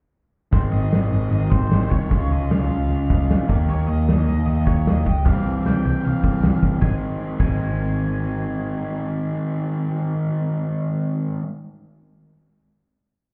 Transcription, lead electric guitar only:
0.53 0.59 C5 medium
0.72 1.30 D#5 medium
1.31 1.50 D#5 medium
1.50 1.90 C5 medium
1.91 2.32 C#5 medium
2.32 2.51 D#5 medium
2.51 3.30 F5 medium
3.70 3.87 C#5 medium
3.87 4.45 D#5 medium
4.47 4.66 D#5 medium
4.66 4.87 C#5 medium
4.88 5.28 D#5 medium
5.25 5.62 F5 medium
5.66 5.84 G5 loud
5.86 6.05 G5 medium
6.05 6.59 F5 medium
6.81 6.92 G#5 medium
7.40 10.67 G#5 medium

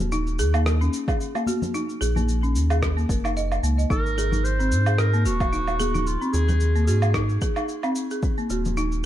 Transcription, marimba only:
0.12 0.38 D#4 loud
0.39 0.53 G#4 medium
0.54 0.66 A#3 medium
0.81 1.07 C#4 medium
1.08 1.34 G#4 medium
1.35 1.46 A#3 medium
1.47 1.61 F#4 medium
1.74 2.00 D#4 medium
2.01 2.14 G#4 medium
2.16 2.28 A#3 medium
2.43 2.69 C#4 medium
2.70 2.96 G#4 medium
2.97 3.09 A#3 medium
3.09 3.23 A#4 medium
3.24 3.36 D#4 medium
3.37 3.51 D#5 medium
3.64 3.78 A#3 medium
3.78 3.89 D#5 medium
3.90 4.16 D#4 loud
4.18 4.31 G#4 medium
4.33 4.44 D#4 medium
4.59 4.85 C4 medium
4.87 5.12 G#4 medium
5.13 5.25 A#3 medium
5.26 5.40 F#4 medium
5.53 5.78 D#4 medium
5.80 5.93 G#4 loud
5.95 6.06 D#4 medium
6.21 6.47 C4 medium
6.49 6.74 G#4 medium
6.76 6.87 A#3 medium
6.88 7.02 F#4 medium
7.15 7.41 D#4 loud
7.42 7.55 G#4 medium
7.57 7.68 D#4 medium
7.84 8.09 C4 medium
8.11 8.23 G#4 medium
8.38 8.49 A#3 medium
8.50 8.64 F#4 medium
8.77 9.03 D#4 loud

